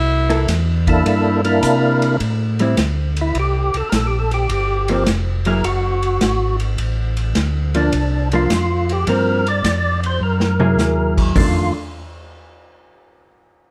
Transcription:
Already playing: tonewheel organ C2, alto saxophone E4
0.30 hollow-body jazz guitar A#3 E4 A4, ride
0.48 tonewheel organ E2, kick, snare, hi-hat pedal, ride
0.87 tonewheel organ A#3 D4 E4 A4, kick, ride
1.05 tonewheel organ G2, kick, ride
1.45 tonewheel organ A#3 D4 E4 A#4, ride
1.63 tonewheel organ C3, kick, hi-hat pedal, ride
2.02 ride
2.20 tonewheel organ A2, kick, ride
2.59 hollow-body jazz guitar G3 C4 E4, ride
2.77 tonewheel organ D2, kick, snare, hi-hat pedal, ride
3.17 ride
3.21 tonewheel organ E4
3.35 tonewheel organ C2, kick, ride
3.39 tonewheel organ G4
3.74 tonewheel organ C2 A4, ride
3.89 tonewheel organ A#1 A#4, kick, snare, hi-hat pedal, ride
3.96 tonewheel organ A4
4.07 tonewheel organ G4
4.19 tonewheel organ A4
4.31 tonewheel organ G4, ride
4.49 tonewheel organ G1 G4, kick, ride
4.88 hollow-body jazz guitar F3 A#3 C4, ride
5.06 tonewheel organ F1, kick, snare, hi-hat pedal, ride
5.45 hollow-body jazz guitar F#3 A#3 E4 G#4, tonewheel organ A#4, ride
5.64 tonewheel organ F#1 F#4, kick, ride
6.03 ride
6.21 tonewheel organ G#1, kick, snare, hi-hat pedal, ride
6.60 ride
6.78 tonewheel organ A1, kick, ride
7.17 ride
7.35 tonewheel organ D2, kick, snare, hi-hat pedal, ride
7.74 hollow-body jazz guitar F3 A#3 D4, tonewheel organ D4, ride
7.92 tonewheel organ C2, kick, ride
8.32 hollow-body jazz guitar F3 A#3 D4, tonewheel organ F4, ride
8.50 tonewheel organ F2, kick, snare, hi-hat pedal, ride
8.89 tonewheel organ G4, ride
9.07 tonewheel organ G2 A#4, hollow-body jazz guitar F3 A#3 C4, kick, ride
9.47 tonewheel organ D5, ride
9.64 tonewheel organ F2, kick, snare, hi-hat pedal, ride
10.03 tonewheel organ C5, ride
10.21 tonewheel organ F#2 A#4
10.40 snare
10.60 hollow-body jazz guitar F#3 A#3 E4 G#4, mid tom
10.77 tonewheel organ D#2, snare, hi-hat pedal
11.18 kick, crash
11.35 tonewheel organ F2 F4, hollow-body jazz guitar D#3 A3 D4, kick, floor tom, open hi-hat

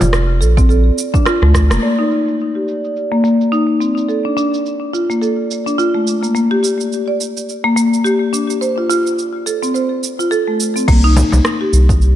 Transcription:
Already playing: singing bowl D5
0.01 analog synth bass F1, frame drum, shaker
0.13 cross-stick, shaker
0.41 analog synth bass A#1, marimba A4, shaker
0.57 marimba C4, kick, shaker
0.69 marimba A4, shaker
0.98 shaker
1.14 marimba D4, kick, shaker
1.26 marimba F4, cross-stick, shaker
1.42 analog synth bass D2, marimba A3, cross-stick
1.54 kick, cross-stick, shaker
1.70 analog synth bass F1, marimba A#3, cross-stick, shaker
1.82 marimba A#3, singing bowl D5, shaker
1.99 marimba D#4
2.11 marimba D#4, shaker
2.28 shaker
2.40 shaker
2.55 marimba G4
2.68 shaker
2.84 shaker
2.96 shaker
3.12 marimba A#3
3.24 marimba A#3, shaker
3.41 shaker
3.52 marimba D#4, shaker
3.80 marimba C4, shaker
3.97 shaker
4.09 marimba A4, shaker
4.25 marimba D4
4.37 marimba D4, shaker
4.54 shaker
4.66 shaker
4.93 marimba F4, shaker
5.10 marimba A#3, shaker
5.22 marimba A4, shaker
5.51 shaker
5.66 marimba D4, shaker
5.78 marimba F4, shaker
5.94 marimba A3
6.07 shaker
6.23 marimba A#3, shaker
6.35 marimba A#3, shaker
6.51 marimba G4
6.63 marimba G4, shaker
6.81 shaker
6.92 shaker
7.08 marimba D5
7.21 shaker
7.37 shaker
7.49 shaker
7.64 marimba A#3
7.76 marimba A#3, shaker
7.94 shaker
8.04 marimba G4, shaker
8.33 marimba D4, shaker
8.50 shaker
8.61 marimba C5, shaker
8.78 marimba F4
8.90 marimba F4, shaker
9.07 shaker
9.19 shaker
9.46 marimba A4, shaker
9.63 marimba C4, shaker
9.74 marimba C5, shaker
10.04 shaker
10.19 marimba F4, shaker
10.31 marimba A4, shaker
10.48 marimba A3
10.60 shaker
10.76 marimba C4, shaker
10.88 analog synth bass C2, marimba A#3, kick, crash, shaker
11.04 marimba D#4
11.16 marimba D#4, frame drum, shaker
11.32 analog synth bass C2, frame drum, shaker
11.45 cross-stick, shaker
11.61 marimba G4
11.73 analog synth bass C2, shaker
11.89 kick, shaker
12.02 shaker

